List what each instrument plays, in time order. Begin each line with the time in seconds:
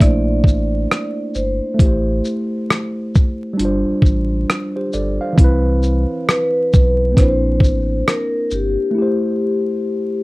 Already playing: tine electric piano A#3
0.00 sub bass A#1, tine electric piano A3 D4 E4, vibraphone D5, kick, cross-stick, closed hi-hat
0.07 tine electric piano C5
0.44 sub bass A1, kick, shaker
0.91 cross-stick, closed hi-hat
1.35 sub bass G1, vibraphone C5, shaker
1.74 tine electric piano A3 E4
1.79 sub bass A1, tine electric piano G4, kick, closed hi-hat
1.86 tine electric piano C5
2.25 shaker
2.70 cross-stick, closed hi-hat
3.15 kick, shaker
3.53 tine electric piano G3 D4
3.59 sub bass G1, tine electric piano F4, closed hi-hat
3.65 tine electric piano C5
3.86 sub bass A1
4.02 sub bass A1, kick, shaker
4.50 cross-stick, closed hi-hat
4.76 tine electric piano G4 C5
4.93 sub bass G1, tine electric piano A4 D5, shaker
5.21 tine electric piano C5 F5
5.33 tine electric piano E3 C4
5.38 sub bass C2, tine electric piano E4, kick, closed hi-hat
5.44 tine electric piano B4
5.83 shaker
6.29 vibraphone B4, cross-stick, closed hi-hat
6.73 sub bass B1, kick, shaker
7.12 tine electric piano A#3 C4
7.17 sub bass A#1, tine electric piano D4 E4, vibraphone C5, kick, cross-stick, closed hi-hat
7.24 tine electric piano B4
7.30 tine electric piano C5
7.60 sub bass A1, kick, shaker
8.08 vibraphone A#4, cross-stick, closed hi-hat
8.51 sub bass G1, vibraphone G4, shaker
8.91 tine electric piano A3 E4
8.98 tine electric piano G4 C5